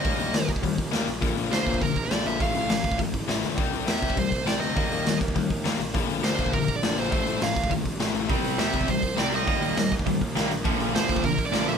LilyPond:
<<
  \new Staff \with { instrumentName = "Lead electric guitar" } { \time 4/4 \key bes \lydian \tempo 4 = 204 ees''4. r2 r8 | r4 c''4 bes'8. d''8. e''8 | f''4 f''4 r2 | r4 e''4 c''4 d''8 ees''8~ |
ees''4. r2 r8 | r4 c''4 bes'8. d''8. c''8 | c''4 f''4 r2 | r4 e''4 c''4 d''8 ees''8~ |
ees''4. r2 r8 | r4 c''4 bes'8. d''8. e''8 | }
  \new Staff \with { instrumentName = "Overdriven electric guitar" } { \clef bass \time 4/4 \key bes \lydian <ees g bes>4 <ees g>8 r8 <ees g>8 r8 <ees g bes>8 r8 | <bes, d f>4 <bes, d f>4 <bes, d>8 r8 <bes, d f>4 | <a, f a>4 <a, f>8 r8 <a, f>8 r8 <a, f a>4 | <c g c'>4 <c g c'>4 <c g>8 r8 <c g c'>4 |
<ees g bes>4 <ees g>8 r8 <ees g>8 r8 <ees g bes>8 r8 | <bes, d f>4 <bes, d f>4 <bes, d>8 r8 <bes, d f>4 | <a, f a>4 <a, f>8 r8 <a, f>8 r8 <a, f a>4 | <c g c'>4 <c g c'>4 <c g>8 r8 <c g c'>4 |
<ees g bes>4 <ees g>8 r8 <ees g>8 r8 <ees g bes>8 r8 | <bes, d f>4 <bes, d f>4 <bes, d>8 r8 <bes, d f>4 | }
  \new Staff \with { instrumentName = "Overdriven electric guitar" } { \clef bass \time 4/4 \key bes \lydian r1 | r1 | r1 | r1 |
r1 | r1 | r1 | <c g c'>4 <c g c'>4 <c g>8 r8 <c g c'>4 |
<ees g bes>4 <ees g>8 r8 <ees g>8 r8 <ees g bes>8 r8 | <bes, d f>4 <bes, d f>4 <bes, d>8 r8 <bes, d f>4 | }
  \new Staff \with { instrumentName = "Picked electric bass" } { \clef bass \time 4/4 \key bes \lydian ees,8 ees,8 ees,8 ees,8 ees,8 ees,8 ees,8 bes,,8 | bes,,8 bes,,8 d,8 bes,8 bes,,4 bes,,8 bes,,8 | a,,8 a,,8 a,,8 a,,8 a,,8 a,,8 a,,8 d,8 | c,8 c,8 e,8 c8 c,4 c,8 d,8 |
ees,8 ees,8 ees,8 ees,8 ees,8 ees,8 ees,8 bes,,8 | bes,,8 bes,,8 d,8 bes,8 bes,,4 bes,,8 bes,,8 | a,,8 a,,8 a,,8 a,,8 a,,8 a,,8 a,,8 a,,8 | c,8 c,8 e,8 c8 c,4 c,8 c,8 |
ees,8 ees,8 ees,8 ees,8 ees,8 ees,8 c,8 bes,,8 | bes,,8 bes,,8 d,8 bes,8 bes,,4 bes,,8 bes,,8 | }
  \new DrumStaff \with { instrumentName = "Drums" } \drummode { \time 4/4 <hho bd>8 hho8 <hho sn>8 <hho bd>16 bd16 <hho bd>8 <hho bd>8 <hho sn>8 hho8 | <hho bd>8 hho8 <hho sn>8 <hho bd>16 bd16 <hho bd>8 <hho bd>8 <hho sn>8 hho8 | <hho bd>8 hho8 <hho sn>8 <hho bd>16 bd16 <hho bd>8 <hho bd>8 <hho sn>8 hho8 | <hho bd>8 hho8 <hho sn>8 <hho bd>16 bd16 <hho bd>8 <hho bd>8 <hho sn>8 hho8 |
<hho bd>8 hho8 <hho sn>8 <hho bd>16 bd16 <hho bd>8 <hho bd>8 <hho sn>8 hho8 | <hho bd>8 hho8 <hho sn>8 <hho bd>16 bd16 <hho bd>8 <hho bd>8 <hho sn>8 hho8 | <hho bd>8 hho8 <hho sn>8 <hho bd>16 bd16 <hho bd>8 <hho bd>8 <hho sn>8 hho8 | <hho bd>8 hho8 <hho sn>8 <hho bd>16 bd16 <hho bd>8 <hho bd>8 <hho sn>8 hho8 |
<hho bd>8 hho8 <hho sn>8 <hho bd>16 bd16 <hho bd>8 <hho bd>8 <hho sn>8 hho8 | <hho bd>8 hho8 <hho sn>8 <hho bd>16 bd16 <hho bd>8 <hho bd>8 <hho sn>8 hho8 | }
>>